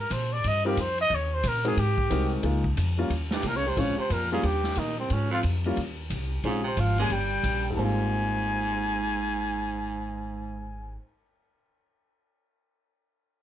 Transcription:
0.00 trumpet A#4
0.10 upright bass A#2, trumpet C5, kick, hi-hat pedal, ride
0.33 trumpet D5
0.44 upright bass G2, trumpet D#5, kick, ride
0.65 grand piano G3 C4 D#4 F4 A#4, trumpet G4
0.77 upright bass F2, trumpet C5, kick, hi-hat pedal, ride
0.98 trumpet D#5, ride
1.10 upright bass D#2, kick, ride
1.15 trumpet C#5
1.34 trumpet C5
1.43 upright bass A#2, kick, hi-hat pedal, ride
1.48 trumpet A#4
1.64 grand piano G#3 C4 D#4 F#4 A#4, trumpet G#4, ride
1.77 upright bass G#2, trumpet G4, kick, ride
1.98 kick
2.10 upright bass C2, grand piano G#3 C4 D#4 F#4 A#4, kick, hi-hat pedal, ride
2.43 upright bass C#2, grand piano G#3 A#3 D#4 F4, kick, ride
2.64 kick
2.77 upright bass F2, kick, hi-hat pedal, ride
2.98 grand piano G3 A#3 C#4 F4
3.10 upright bass D#2, kick, ride
3.31 baritone saxophone G2, trumpet G4, snare
3.43 upright bass C2, baritone saxophone A#2, kick, hi-hat pedal, ride
3.48 trumpet A#4
3.56 baritone saxophone C#3, trumpet C#5
3.67 baritone saxophone C3, trumpet C5
3.77 upright bass A#1, baritone saxophone C#3, grand piano G#3 C4 C#4 F4, trumpet C#5, kick, ride
3.97 baritone saxophone C3, trumpet C5, muted upright bass stroke
4.10 upright bass F2, baritone saxophone A#2, trumpet A#4, kick, hi-hat pedal, ride
4.31 baritone saxophone G#2, grand piano G3 A#3 C#4 F4, trumpet G#4, ride
4.43 upright bass D#2, baritone saxophone G2, trumpet G4, kick, ride
4.64 snare
4.76 baritone saxophone D#2, upright bass A#2, trumpet D#4, kick, hi-hat pedal, ride
4.98 baritone saxophone C2, trumpet C4
5.10 baritone saxophone C#2, upright bass G#2, trumpet C#4, kick, ride
5.31 baritone saxophone F2, trumpet F4
5.43 upright bass F2, kick, hi-hat pedal, ride
5.64 grand piano G3 A#3 C#4 F4, ride
5.77 upright bass D#2, kick, ride
6.10 upright bass C2, kick, hi-hat pedal, ride
6.44 upright bass A#1, baritone saxophone G#2, grand piano G#3 C4 C#4 F4, trumpet G#4, kick, ride
6.64 baritone saxophone C3, trumpet C5
6.77 upright bass G#1, baritone saxophone F3, trumpet F5, kick, hi-hat pedal, ride
6.98 grand piano G3 A#3 C#4 G4, baritone saxophone G#3, trumpet G#5, ride
7.10 upright bass G1, baritone saxophone G3, trumpet G5, kick, ride
7.43 upright bass A#1, kick, hi-hat pedal, ride
7.70 grand piano G#2 G3
7.76 upright bass G#1, baritone saxophone G#2, grand piano A#3 C4, trumpet G#5
7.83 grand piano F4

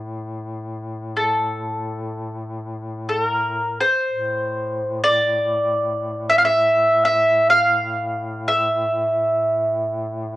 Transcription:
Already playing: duduk A2
1.17 mandolin A4
3.09 mandolin A4
3.23 mandolin A#4
3.81 mandolin C5
4.10 duduk A2
5.04 mandolin D5
6.30 mandolin E5
6.38 mandolin F5
6.45 mandolin E5
7.05 mandolin E5
7.50 mandolin F5
8.48 mandolin E5

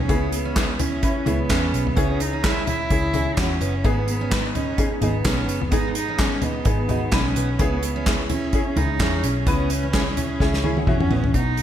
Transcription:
Already playing: upright piano G#2 B3 D#4 G#4, cello C#4
0.08 picked electric bass C#2, upright piano C#3 C#4 E4 G#4, steel-string acoustic guitar B3, cello B3, kick, closed hi-hat
0.32 cello B3, closed hi-hat
0.45 steel-string acoustic guitar C#4
0.55 upright piano C#4 E4 G#4, kick, snare, clap, closed hi-hat
0.79 cello C#4, steel-string acoustic guitar E4, closed hi-hat, floor tom
1.02 upright piano C#4 E4 B4, kick, closed hi-hat
1.25 picked electric bass C#2, cello B3, upright piano C#4 E4 G#4, steel-string acoustic guitar E4, closed hi-hat, floor tom
1.49 picked electric bass E2, upright piano C#4 E4 G#4, steel-string acoustic guitar C#4, kick, snare, clap, closed hi-hat
1.74 picked electric bass B1, closed hi-hat
1.87 floor tom
1.96 picked electric bass C#2, upright piano C#3 C#4 E4 G#4, steel-string acoustic guitar B3, cello C#4, kick, closed hi-hat
2.20 cello D#4, closed hi-hat
2.33 steel-string acoustic guitar C#4
2.43 upright piano C#4 E4 G#4, cello E4, kick, snare, clap, closed hi-hat
2.67 steel-string acoustic guitar E4, cello E4, closed hi-hat, floor tom
2.90 picked electric bass C#2, upright piano C#4 E4 G#4, kick, closed hi-hat
3.13 upright piano C#4 E4 G#4, steel-string acoustic guitar E4, closed hi-hat, floor tom
3.37 picked electric bass E2, upright piano C#4 E4 F#4, cello C#4, kick, snare, clap, closed hi-hat
3.61 picked electric bass F#1, steel-string acoustic guitar B3, closed hi-hat
3.84 picked electric bass G#1, upright piano G#2 B3 D#4 G#4, steel-string acoustic guitar B3, cello B3, kick, closed hi-hat
4.08 cello B3, closed hi-hat
4.21 steel-string acoustic guitar C#4
4.31 upright piano B3 D#4 B4, kick, snare, clap, closed hi-hat
4.55 cello C#4, steel-string acoustic guitar D#4, closed hi-hat, floor tom
4.77 upright piano B3 D#4 G#4, kick, closed hi-hat
5.01 picked electric bass G#1, upright piano B3 D#4 G#4, cello B3, steel-string acoustic guitar D#4, closed hi-hat, floor tom
5.24 picked electric bass B1, upright piano B3 D#4 G#4, steel-string acoustic guitar C#4, kick, snare, clap, closed hi-hat
5.48 picked electric bass F#1, closed hi-hat
5.61 floor tom
5.71 picked electric bass G#1, upright piano G#2 B3 D#4 G#4, steel-string acoustic guitar B3, cello D#4, kick, closed hi-hat
5.95 cello D#4, closed hi-hat
6.08 steel-string acoustic guitar C#4
6.18 upright piano B3 D#4 G#4, cello C#4, kick, snare, clap, closed hi-hat
6.42 cello B3, steel-string acoustic guitar D#4, closed hi-hat, floor tom
6.65 picked electric bass G#1, upright piano B3 D#4 G#4, kick, closed hi-hat
6.88 upright piano B3 D#4 F#4, steel-string acoustic guitar D#4, closed hi-hat, floor tom
7.11 picked electric bass B1, upright piano B3 D#4 B4, cello C#4, kick, snare, clap, closed hi-hat
7.36 picked electric bass B1, steel-string acoustic guitar B3, closed hi-hat
7.59 picked electric bass C#2, upright piano C#3 C#4 E4 G#4, steel-string acoustic guitar B3, cello B3, kick, closed hi-hat
7.83 cello B3, closed hi-hat
7.96 steel-string acoustic guitar C#4
8.06 upright piano C#4 E4 G#4, kick, snare, clap, closed hi-hat
8.29 cello C#4, steel-string acoustic guitar E4, closed hi-hat, floor tom
8.53 upright piano C#4 E4 G#4, kick, closed hi-hat
8.76 picked electric bass C#2, upright piano C#4 E4 G#4, cello D#4, steel-string acoustic guitar E4, closed hi-hat, floor tom
8.99 picked electric bass E2, steel-string acoustic guitar C#4, upright piano C#4 E4 G#4, kick, snare, clap, closed hi-hat
9.23 picked electric bass B1, cello C#4, closed hi-hat
9.46 picked electric bass C#2, upright piano C#3 C#4 E4 B4, steel-string acoustic guitar B3, kick, closed hi-hat
9.70 closed hi-hat
9.83 steel-string acoustic guitar C#4
9.93 upright piano C#4 E4 G#4, kick, snare, clap, closed hi-hat
10.17 steel-string acoustic guitar E4, closed hi-hat, floor tom
10.40 picked electric bass C#2, upright piano C#4 E4 G#4, kick, snare
10.54 snare
10.63 upright piano C#4 E4 G#4 G#5, steel-string acoustic guitar E4, high tom
10.77 upright piano F#5, high tom
10.87 picked electric bass E2, upright piano C#4 E4 F#4 E5, cello C#4, kick, mid tom
11.00 mid tom
11.11 picked electric bass A1, steel-string acoustic guitar B3, floor tom
11.24 floor tom
11.34 picked electric bass B1, upright piano B2 B3 D#4 F#4, cello D#4, kick, closed hi-hat
11.57 closed hi-hat

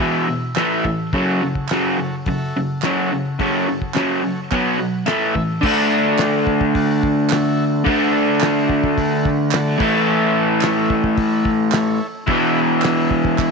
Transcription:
0.00 overdriven electric guitar E2 B2 E3, transistor combo organ E4 B4 E5, kick, open hi-hat
0.28 overdriven electric guitar E2 B2
0.55 overdriven electric guitar A2 E3 A3, transistor combo organ E4 A4 E5, snare, clap, open hi-hat
0.85 overdriven electric guitar A2 E3, kick
1.13 overdriven electric guitar F#2 C#3 F#3, transistor combo organ F#4 A4 C#5, kick, open hi-hat
1.42 overdriven electric guitar F#2 C#3
1.55 kick
1.69 overdriven electric guitar F#2 C#3, transistor combo organ F#4 A4 B4, snare, clap, open hi-hat
1.73 overdriven electric guitar F#3
1.97 overdriven electric guitar F#2 C#3, transistor combo organ F#4 A4 C#5
2.26 overdriven electric guitar F#2 C#3, transistor combo organ F#4 A4 E5, kick, open hi-hat
2.57 overdriven electric guitar F#2 C#3
2.82 overdriven electric guitar F#2 C#3 F#3, transistor combo organ F#4 A4 C#5, snare, clap, open hi-hat
3.12 overdriven electric guitar F#2 C#3
3.39 overdriven electric guitar F#2 C#3 F#3, transistor combo organ F#4 A4 C#5, kick, open hi-hat
3.68 overdriven electric guitar F#2 C#3
3.82 kick
3.94 overdriven electric guitar F#2 C#3 F#3, transistor combo organ F#4 A4 C#5, snare, clap, open hi-hat
4.23 overdriven electric guitar F#2 C#3, transistor combo organ F#4 A4 C#5
4.51 overdriven electric guitar B2 F#3 B3, transistor combo organ F#4 B4 F#5, kick, clap, open hi-hat
4.79 overdriven electric guitar B2 F#3
5.06 overdriven electric guitar A2 E3 A3, transistor combo organ E4, snare, clap, open hi-hat
5.12 transistor combo organ A4 E5
5.35 overdriven electric guitar A2 E3, kick
5.61 overdriven electric guitar D3 A3, transistor combo organ F#4 A4, kick, crash
5.65 overdriven electric guitar D4, transistor combo organ D5
6.18 transistor combo organ F#4 A4 D5, snare, clap, open hi-hat
6.47 kick
6.61 kick
6.73 transistor combo organ F#4 A4 D5, kick, open hi-hat
7.03 kick
7.30 transistor combo organ F#4 A4 E5, snare, clap, open hi-hat
7.84 overdriven electric guitar D3 A3, transistor combo organ F#4 A4, kick, open hi-hat
7.89 overdriven electric guitar D4, transistor combo organ B4
8.41 transistor combo organ F#4 A4, snare, clap, open hi-hat
8.45 transistor combo organ D5
8.69 kick
8.84 kick
8.96 transistor combo organ F#4 A4 B4, kick, open hi-hat
9.25 kick
9.51 transistor combo organ F#4 A4, snare, clap, open hi-hat
9.56 transistor combo organ D5
9.78 overdriven electric guitar A2 E3, kick, crash
9.83 overdriven electric guitar A3, transistor combo organ E4 A4 C#5
10.61 transistor combo organ E4 A4 C#5, snare, clap, open hi-hat
10.90 kick
11.04 kick
11.15 transistor combo organ E4 A4 B4, kick, open hi-hat
11.45 kick
11.72 transistor combo organ E4 A4 C#5, snare, clap, open hi-hat
12.26 overdriven electric guitar E2 B2, transistor combo organ E4 G#4 B4, kick, open hi-hat
12.31 overdriven electric guitar E3
12.78 transistor combo organ E4 G#4 B4, clap
12.84 snare, open hi-hat
13.11 kick
13.25 kick
13.36 transistor combo organ E4 G#4 B4, kick, clap, open hi-hat

